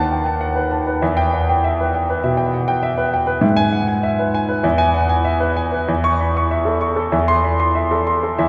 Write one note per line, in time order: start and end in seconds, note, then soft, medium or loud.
0.00 0.98 D#2 medium
0.00 0.41 F#5 medium
0.00 0.21 A5 medium
0.12 0.27 G5 soft
0.26 0.50 A5 medium
0.41 0.65 F#5 medium
0.56 0.80 B4 medium
0.71 0.96 A5 medium
0.87 1.02 B4 medium
1.02 2.20 E2 medium
1.02 1.26 E5 medium
1.17 1.42 G5 medium
1.34 1.49 F#5 medium
1.49 1.73 G5 medium
1.64 1.88 E5 medium
1.80 2.03 B4 medium
1.95 2.18 G5 medium
2.10 2.33 B4 medium
2.24 2.47 B2 medium
2.24 2.47 E5 medium
2.37 2.62 G5 medium
2.54 2.68 F#5 medium
2.68 2.92 G5 medium
2.83 3.07 E5 medium
2.98 3.22 B4 medium
3.14 3.37 G5 medium
3.27 3.43 B4 medium
3.41 4.60 G#2 medium
3.41 3.66 E5 medium
3.56 3.82 G#5 medium
3.73 3.88 F#5 medium
3.88 4.13 G#5 medium
4.03 4.28 E5 medium
4.19 4.43 B4 medium
4.34 4.58 G#5 medium
4.49 4.64 B4 medium
4.63 5.85 E2 medium
4.63 4.88 E5 medium
4.78 5.03 G#5 medium
4.94 5.09 F#5 medium
5.09 5.34 G#5 medium
5.25 5.50 E5 medium
5.40 5.66 B4 medium
5.57 5.82 G#5 medium
5.72 5.88 B4 medium
5.88 7.10 E2 medium
5.88 6.14 E5 medium
6.04 6.30 C#6 medium
6.20 6.36 B5 medium
6.37 6.61 C#6 medium
6.51 6.76 E5 medium
6.65 6.91 A4 medium
6.81 7.07 C#6 medium
6.96 7.13 A4 medium
7.12 8.36 E2 medium
7.12 7.38 E5 medium
7.28 7.54 C6 medium
7.44 7.60 B5 medium
7.60 7.86 C6 medium
7.75 8.01 E5 medium
7.91 8.17 A4 medium
8.07 8.33 C6 medium
8.23 8.40 A4 medium
8.38 8.49 E2 medium
8.38 8.49 E5 medium